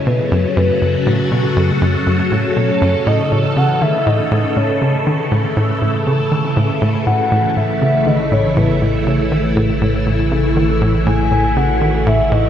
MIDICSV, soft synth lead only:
0, 0, Header, 1, 2, 480
1, 0, Start_track
1, 0, Tempo, 500000
1, 1024, Time_signature, 4, 2, 24, 8
1, 11996, End_track
2, 0, Start_track
2, 0, Title_t, "Soft synth lead"
2, 0, Program_c, 0, 80
2, 65, Note_on_c, 0, 71, 93
2, 471, Note_off_c, 0, 71, 0
2, 477, Note_on_c, 0, 73, 57
2, 544, Note_on_c, 0, 71, 81
2, 558, Note_off_c, 0, 73, 0
2, 904, Note_off_c, 0, 71, 0
2, 2226, Note_on_c, 0, 73, 90
2, 2944, Note_on_c, 0, 75, 102
2, 2959, Note_off_c, 0, 73, 0
2, 3184, Note_on_c, 0, 73, 95
2, 3199, Note_off_c, 0, 75, 0
2, 3424, Note_on_c, 0, 78, 115
2, 3438, Note_off_c, 0, 73, 0
2, 3664, Note_on_c, 0, 76, 100
2, 3678, Note_off_c, 0, 78, 0
2, 3903, Note_on_c, 0, 75, 104
2, 3917, Note_off_c, 0, 76, 0
2, 4382, Note_on_c, 0, 73, 84
2, 4397, Note_off_c, 0, 75, 0
2, 4743, Note_off_c, 0, 73, 0
2, 6784, Note_on_c, 0, 78, 113
2, 7265, Note_on_c, 0, 76, 107
2, 7280, Note_off_c, 0, 78, 0
2, 7745, Note_on_c, 0, 75, 101
2, 7759, Note_off_c, 0, 76, 0
2, 7985, Note_on_c, 0, 73, 88
2, 7999, Note_off_c, 0, 75, 0
2, 8226, Note_on_c, 0, 71, 79
2, 8240, Note_off_c, 0, 73, 0
2, 8585, Note_off_c, 0, 71, 0
2, 10623, Note_on_c, 0, 80, 116
2, 11104, Note_on_c, 0, 78, 108
2, 11118, Note_off_c, 0, 80, 0
2, 11584, Note_on_c, 0, 76, 104
2, 11599, Note_off_c, 0, 78, 0
2, 11825, Note_on_c, 0, 75, 95
2, 11840, Note_off_c, 0, 76, 0
2, 11996, Note_off_c, 0, 75, 0
2, 11996, End_track
0, 0, End_of_file